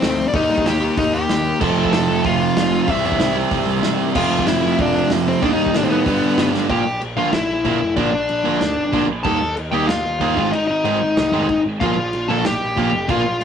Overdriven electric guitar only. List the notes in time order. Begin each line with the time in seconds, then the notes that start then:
1.60 F2 C3 F3
2.87 C3 G3 C4
4.15 F2 C3 F3
5.42 D#3 A#3 D#4
6.05 G2 D3 G3
6.69 A#2 F3 A#3
7.17 A#2 F3 A#3
7.65 A#2 F3 A#3
7.97 A#2 F3 A#3
8.45 A#2 F3 A#3
8.93 A#2 F3 A#3
9.24 D#3 A#3 D#4
9.72 D#3 A#3 D#4
10.21 D#3 A#3 D#4
10.36 G#2 D#3 G#3
10.85 G#2 D#3 G#3
11.33 G#2 D#3 G#3
11.82 A#2 F3 A#3
12.30 A#2 F3 A#3
12.77 A#2 F3 A#3
13.09 A#2 F3 A#3